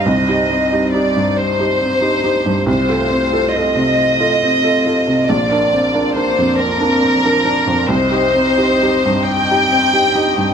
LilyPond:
<<
  \new Staff \with { instrumentName = "Violin section" } { \time 6/8 \key c \dorian \tempo 4. = 46 ees''4 d''8 c''4. | c''4 ees''2 | d''4 c''8 bes'4. | c''4. g''4. | }
  \new Staff \with { instrumentName = "String section" } { \time 6/8 \key c \dorian << { <g c''>2. | <a c''>2. | <c' d''>2. | <c' ees''>2. | } \\ { ees'2. | f'2.~ | f'2. | g'2. | } >> }
  \new Staff \with { instrumentName = "Felt piano" } { \time 6/8 \key c \dorian <c, g,>16 <ees' g'>16 c'16 <ees' g'>16 <ees' g'>16 g,8 <ees' g'>16 c'16 <ees' g'>16 <ees' g'>16 g,16 | c,16 <f' a'>16 c'16 <f' a'>16 <f' a'>16 c8 <f' a'>16 c'16 <f' a'>16 <f' a'>16 c16 | bes,,16 <d' bes'>16 c'16 <d' bes'>16 <d' bes'>16 f,8 <d' bes'>16 c'16 <d' bes'>16 <d' bes'>16 f,16 | c,16 <ees' g'>16 c'16 <ees' g'>16 <ees' g'>16 g,8 <ees' g'>16 c'16 <ees' g'>16 <ees' g'>16 g,16 | }
>>